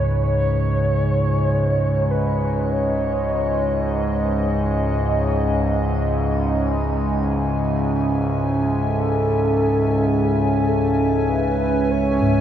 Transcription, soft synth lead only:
0.00 0.27 C#5 loud
0.27 2.12 C#5 loud
2.11 2.74 B4 loud
2.72 4.56 C#5 medium
8.85 10.08 A4 medium
10.06 10.70 G#4 loud
10.68 11.31 A4 medium
11.29 11.93 B4 loud
11.91 12.41 C#5 loud

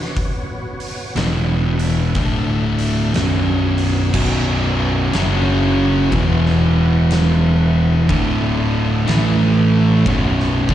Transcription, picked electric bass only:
1.16 2.11 E1 medium
2.15 3.11 D1 medium
3.15 4.10 B0 medium
4.14 5.09 B0 loud
5.13 6.08 F#1 loud
6.12 8.05 E1 loud
8.09 9.04 D1 medium
9.08 10.02 A1 loud
10.06 10.65 B0 medium
10.69 10.74 D1 loud

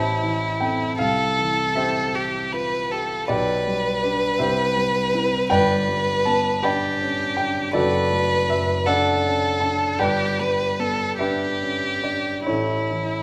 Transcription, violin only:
0.00 0.97 E4 medium
0.99 2.17 A4 medium
2.15 2.54 G4 soft
2.53 2.93 B4 medium
2.91 3.30 A4 soft
3.30 5.47 B4 medium
5.51 6.65 B4 medium
6.63 7.74 G4 medium
7.75 8.88 B4 medium
8.86 10.01 A4 medium
9.99 10.41 G4 medium
10.39 10.81 B4 medium
10.80 11.19 A4 medium
11.19 12.45 G4 medium
12.48 13.23 E4 soft

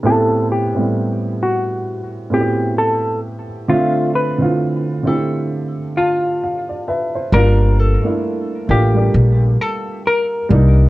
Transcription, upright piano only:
0.03 0.59 A2 loud
0.03 0.60 B3 medium
0.03 0.61 C4 medium
0.03 0.61 E4 medium
0.07 0.62 G4 medium
0.74 2.00 A2 medium
0.74 2.02 G3 medium
0.74 2.00 B3 medium
0.74 2.01 C4 medium
0.74 2.01 E4 medium
2.30 3.42 A2 medium
2.30 3.43 B3 medium
2.30 3.43 C4 medium
2.30 3.43 E4 medium
2.34 2.41 F#4 medium
2.41 3.47 G4 medium
3.68 4.24 D3 loud
3.68 4.25 A3 medium
3.68 4.25 C4 medium
3.68 4.26 F4 loud
3.68 4.25 E5 medium
4.38 4.92 D3 medium
4.38 4.92 A3 medium
4.38 4.93 C4 medium
4.38 4.93 E4 medium
4.42 4.94 F4 medium
5.03 5.79 D3 medium
5.03 5.80 A3 medium
5.03 5.80 C4 medium
5.03 5.81 E4 medium
5.03 5.81 G4 medium
5.97 6.39 A5 medium
6.43 6.85 F5 medium
6.69 6.86 D5 medium
6.88 7.13 B4 medium
6.88 7.30 E5 medium
7.15 7.57 C5 medium
7.32 7.88 G3 medium
7.32 7.88 A#3 medium
7.32 7.89 D4 medium
7.36 7.90 F4 loud
8.02 8.56 A3 medium
8.02 8.57 A#3 medium
8.02 8.57 D4 medium
8.06 8.58 E4 medium
8.67 8.89 A3 medium
8.67 8.90 A#3 medium
8.67 8.90 D4 medium
8.67 8.91 F4 medium
8.94 10.37 G3 medium
8.94 10.38 A#3 medium
8.94 10.38 D4 medium
8.94 10.39 G4 medium
10.49 10.89 G3 medium
10.49 10.89 A#3 medium
10.49 10.89 D4 medium
10.53 10.89 D#4 medium

